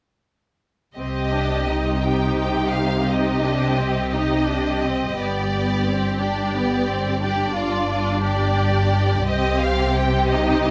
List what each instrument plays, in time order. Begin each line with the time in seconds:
0.96 double bass section C2, cello section C3, viola section C4, violin section G4 D#5
1.33 viola section D4
1.70 viola section D#4
2.01 violin section G4 G5
2.38 violin section G5
2.73 violin section F5
3.08 viola section D#4, violin section G4 D#5
3.43 viola section D4
3.78 viola section C4
4.12 viola section D#4, violin section D#5
4.45 viola section D4
4.83 viola section C4
5.17 double bass section G1, cello section G2, viola section B3, violin section G4 D5
5.52 viola section B3
5.86 viola section C4
6.19 viola section D4, violin section D5
6.55 viola section B3
6.88 viola section C4
7.22 viola section D4, violin section G4 D5
7.55 violin section F4
7.90 violin section F4
8.25 violin section G4 D5
9.26 double bass section C2, cello section C3, viola section C4, violin section G4 D#5
9.62 violin section F5
9.96 violin section G5
10.30 viola section D#4, violin section D#5